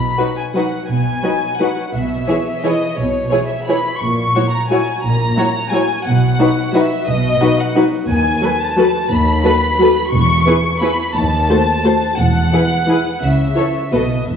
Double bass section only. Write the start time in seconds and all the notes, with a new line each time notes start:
Already playing: B1
0.90 B1
1.94 B1
2.97 B1
4.02 A#1
5.04 A#1
6.07 B1
7.08 B1
8.08 D#2
9.11 D#2
10.13 E1
11.16 D#2
12.19 E1
13.21 C#2
13.94 B1
14.29 E1